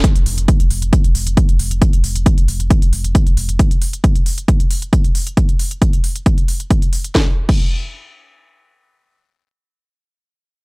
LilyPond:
<<
  \new Staff \with { instrumentName = "Sub bass" } { \clef bass \time 4/4 \key c \phrygian \tempo 4 = 135 r16 f,,16 f,,16 f,,16 r16 f,,16 f,,16 f,,16 r16 f,,16 f,,16 f,,16 r16 f,,16 f,,16 f,,16 | r16 f,,16 f,,16 f,,16 r16 f,,16 f,,16 f,,16 r16 f,,16 f,,16 f,,16 r16 f,,16 f,,16 f,,16 | r1 | r1 |
r1 | r1 | }
  \new DrumStaff \with { instrumentName = "Drums" } \drummode { \time 4/4 <hh bd>16 hh16 hho16 hh16 <hh bd>16 hh16 hho16 hh16 <hh bd>16 hh16 hho16 hh16 <hh bd>16 hh16 hho16 hh16 | <hh bd>16 hh16 hho16 hh16 <hh bd>16 hh16 hho16 hh16 <hh bd>16 hh16 hho16 hh16 <hh bd>16 hh16 hho16 hh16 | <hh bd>16 hh16 hho16 hh16 <hh bd>16 hh16 hho16 hh16 <hh bd>16 hh16 hho16 hh16 <hh bd>16 hh16 hho16 hh16 | <hh bd>16 hh16 hho16 hh16 <hh bd>16 hh16 hho16 hh16 <hh bd>16 hh16 hho16 hh16 <hh bd>16 hh16 hho16 hh16 |
<bd sn>8. <cymc bd>16 r4 r4 r4 | r4 r4 r4 r4 | }
>>